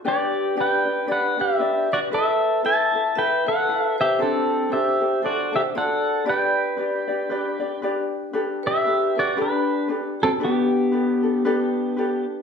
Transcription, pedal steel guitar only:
X:1
M:4/4
L:1/8
Q:"Swing" 1/4=116
K:G
V:1 name="Pedal steel guitar"
[Gd]2 [Bg]2 [Bf] [Ge]2 [Fd] | [Ae]2 [ea]2 [Bg] [Af]2 [Ge] | [CA]2 [Ge]2 [Fd] [Ge] [Af]2 | [Bg]6 z2 |
z [Ge]2 [Fd] [DB]2 z [CA] | [B,G]6- [B,G] z |]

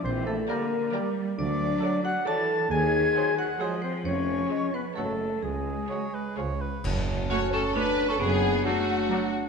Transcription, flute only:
X:1
M:3/4
L:1/8
Q:1/4=133
K:Gdor
V:1 name="Flute"
c' a b3 z | [K:F#m] d'3 f' a'2 | g'3 f' g ^b | c'3 b a2 |
g4 z2 | a6 | f6 |]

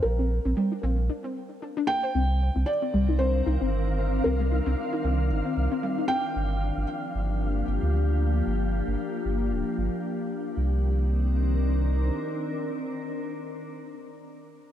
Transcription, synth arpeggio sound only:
X:1
M:4/4
L:1/16
Q:"Swing 16ths" 1/4=114
K:Cm
V:1 name="Synth arpeggio sound"
z C z C G, D C z D C z2 D D B, c | C z2 C z C G, E C z E C z2 C z | C G, E C z E C z2 C z C G, E C z | z16 |
z16 | z16 | z16 |]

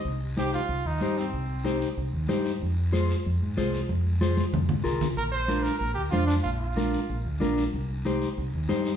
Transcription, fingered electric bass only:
X:1
M:4/4
L:1/8
Q:1/4=188
K:Cm
V:1 name="Fingered electric bass" clef=bass
C,,4 C,, E,, G,,2 | C,,4 C,, E,, G,,2 | F,,4 F,, A,, C,,2 | F,,4 F,, A,, C,,2 |
B,,,4 B,,, D,, F,,2 | B,,,4 B,,, D,, B,,,2 | C,,4 C,, E,, G,,2 |]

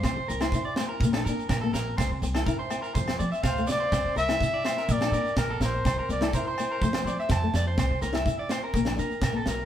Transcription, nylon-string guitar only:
X:1
M:4/4
L:1/16
Q:1/4=124
K:Cmix
V:1 name="Nylon-string guitar"
C2 C E E2 C2 B, D D2 z B,2 z | C2 C E E2 C2 z C C2 z A,2 z | C2 C E E2 C2 B, D D2 z4 | C2 C E E2 C2 A, C C2 z A,2 z |
C2 C E E2 C2 B, D D2 z B,2 z |]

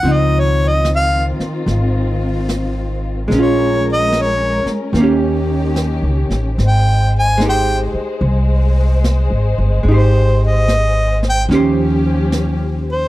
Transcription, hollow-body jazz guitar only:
X:1
M:4/4
L:1/8
Q:"Swing" 1/4=73
K:Ab
V:1 name="Hollow-body jazz guitar"
[F,CE]8 | [A,DF]4 [E,B,DG]4 | z2 [A,EGc]6 | [A,EGc]4 [E,DGc]4 |]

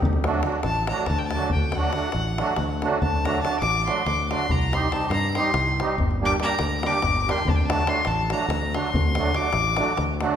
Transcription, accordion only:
X:1
M:7/8
L:1/8
Q:1/4=142
K:none
V:1 name="Accordion"
z [^F,A,D^F] [F,A,DF] z [F,A,DF] z [F,A,DF] | z [^F,A,D^F] [F,A,DF] z [F,A,DF] z [F,A,DF] | z [^F,A,D^F] [F,A,DF] z [F,A,DF] z [F,A,DF] | z [G,C_EG] [G,CEG] z [G,CEG] z [G,CEG] |
z [G,_B,DG] [G,B,DG] z [G,B,DG] z [G,B,DG] | z [^F,A,D^F] [F,A,DF] z [F,A,DF] z [F,A,DF] | z [^F,A,D^F] [F,A,DF] z [F,A,DF] z [F,A,DF] |]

